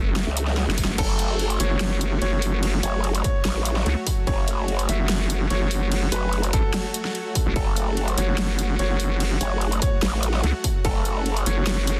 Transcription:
Already playing: F#1 F#3 A3 F#4 E5
0.16 snare
0.27 C#2
0.37 closed hi-hat
0.48 snare
0.57 snare
0.68 F#1, snare
0.78 kick, open hi-hat
0.85 F#1, snare
0.98 F#1 A4 C#5, kick, crash, ride
1.19 closed hi-hat
1.39 ride
1.50 closed hi-hat
1.60 F#1 C#5, closed hi-hat
1.80 snare, ride
2.01 closed hi-hat
2.07 F#5
2.22 F#1 C#5, ride
2.42 open hi-hat
2.63 ride
2.83 F#1 C#5, closed hi-hat
3.04 ride
3.15 closed hi-hat
3.24 C#5, kick, closed hi-hat
3.45 A1, snare, ride
3.65 closed hi-hat
3.76 snare
3.86 C#2, ride
4.07 kick, open hi-hat
4.27 F#1 C#5, kick, ride
4.48 closed hi-hat
4.68 ride
4.79 closed hi-hat
4.89 F#1 E5, closed hi-hat
5.09 snare, ride
5.30 closed hi-hat
5.50 F#1 C#5, ride
5.71 open hi-hat
5.92 ride
6.12 F#1 B4, closed hi-hat
6.33 ride
6.43 closed hi-hat
6.53 A1 A4, kick, closed hi-hat
6.74 snare, ride
6.94 closed hi-hat
7.05 snare
7.15 ride
7.35 kick, open hi-hat
7.46 A1
7.56 F#1 A4 F#5, kick, ride
7.76 closed hi-hat
7.97 ride
8.08 closed hi-hat
8.18 F#1 C#5, closed hi-hat
8.38 snare, ride
8.59 closed hi-hat
8.65 C#5
8.79 F#1 C#5, ride
9.00 open hi-hat
9.20 ride
9.41 F#1 C#5, closed hi-hat
9.61 ride
9.72 closed hi-hat
9.82 C#5, kick, closed hi-hat
10.02 A1, snare, ride
10.23 closed hi-hat
10.34 snare
10.43 C#2, ride
10.64 kick, open hi-hat
10.85 F#1 A4, kick, ride
11.05 closed hi-hat
11.26 ride
11.37 closed hi-hat
11.46 F#1 C#5, closed hi-hat
11.67 snare, ride
11.87 closed hi-hat

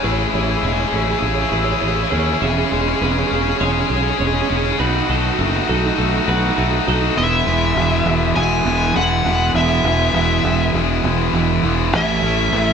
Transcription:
Already playing: C#3 E3 G#3 C#4 E5
0.03 A1 A2 C#4 E4 G#4 B4 C#5
0.12 E4 G#4 C#5
0.18 E4 G#4 C#5
0.26 E4 G#4 C#5
0.33 A1 E3 E4 G#4 C#5
0.41 E4 G#4 C#5
0.49 E4 G#4 C#5
0.57 E4 G#4 C#5
0.63 E1 G#3 E4 G#4 C#5
0.72 E4 G#4 C#5
0.80 E4 G#4 C#5
0.87 E4 G#4 C#5
0.92 A1 C#4 E4
0.96 G#4 C#5
1.02 E4 G#4 C#5
1.11 E4 G#4 C#5
1.18 A1 E4 G#4 C#5
1.27 E4 G#4 C#5
1.34 E4 G#4 C#5
1.42 E4 G#4 C#5
1.49 A1 E4 G#4 B4 C#5
1.57 E4 G#4 C#5
1.64 E4 G#4 C#5
1.72 E4 G#4 C#5
1.79 A1 E4 G#4 C#5
1.88 E4 G#4 C#5
1.96 E4 G#4 C#5
2.03 E4 G#4 C#5
2.10 D#2 C#4 E4 G#4 C#5
2.18 E4 G#4 C#5
2.26 E4 G#4 C#5
2.34 E4 G#4 C#5
2.41 E1 E3 B3 C#4 G#4 E5
2.49 C#4 G#4
2.57 C#4 G#4
2.65 C#4 G#4
2.71 E1 G#3 C#4 G#4
2.80 C#4 G#4
2.88 C#4 G#4
2.96 C#4 G#4
3.01 E1 G#3 C#4 G#4 B4
3.11 C#4 G#4
3.19 C#4 G#4
3.26 C#4 G#4
3.30 E1 C#4
3.36 G#4
3.42 C#4 G#4
3.50 C#4 G#4
3.58 E1 G#3 C#4 G#4 C#5
3.65 C#4 G#4
3.72 C#4 G#4
3.80 C#4 G#4
3.87 B1 C#4 G#4
3.95 C#4 G#4
4.03 C#4 G#4
4.11 C#4 G#4
4.18 E1 G#3 C#4 G#4 C#5
4.26 C#4 G#4
4.35 C#4 G#4
4.41 C#4 G#4
4.49 E1 C#4 G#4
4.56 C#4 G#4
4.64 C#4 G#4
4.72 C#4 G#4
4.79 B1 B2 D#3 A3 D#4 F#4 B4
4.87 D#4 F#4
4.94 D#4 F#4
5.02 D#4 F#4
5.09 B1 F#3 D#4 F#4 A4
5.18 D#4 F#4
5.25 D#4 F#4
5.33 D#4 F#4
5.39 F#1 A3 D#4 F#4
5.48 D#4 F#4
5.56 D#4 F#4
5.64 D#4 F#4
5.68 B1 D#4 F#4 A4
5.78 D#4 F#4
5.86 D#4 F#4
5.94 A3 D#4 F#4
5.98 B1 D#4 F#4
6.10 D#4 F#4
6.18 D#4 F#4
6.25 B1 D#4 F#4 B4
6.33 D#4 F#4
6.40 D#4 F#4
6.49 D#4 F#4
6.56 B1 A3 D#4 F#4
6.64 D#4 F#4
6.71 D#4 F#4
6.79 D#4 F#4
6.86 B1 D#4 F#4 A4
6.95 D#4 F#4
7.01 D#4 F#4
7.09 D#4 F#4
7.16 E1 E2 B2 E3 G#3 B3 E4 F#4 E5
7.46 E1 E2 B2 E3 G#3 B3 E4
7.76 E1 E2 B2 E3 G#3 B3 E4
8.05 E1 E2 B2 E3 G#3 B3 E4
8.35 E1 E2 B2 E3 G#3 B3 E4 G#5
8.64 E1 E2 B2 E3 G#3 B3 E4
8.94 E1 E2 B2 E3 G#3 B3 E4 F#5
9.24 E1 E2 B2 E3 G#3 B3 E4
9.54 E1 E2 B2 E3 G#3 B3 E4 E5
9.84 E1 E2 B2 E3 G#3 B3 E4
10.13 E1 E2 B2 E3 G#3 B3 E4
10.44 E1 E2 B2 E3 G#3 B3 E4
10.74 E1 E2 B2 E3 G#3 B3 E4
11.03 E1 E2 B2 E3 G#3 B3 E4
11.33 E1 E2 B2 E3 G#3 B3 E4
11.63 E1 E2 B2 E3 G#3 B3 E4
11.93 A1 A2 E3 A3 C#4 E4 G#4 E5
12.22 A1 A2 E3 A3 C#4 E4
12.52 A1 A2 E3 A3 C#4 E4

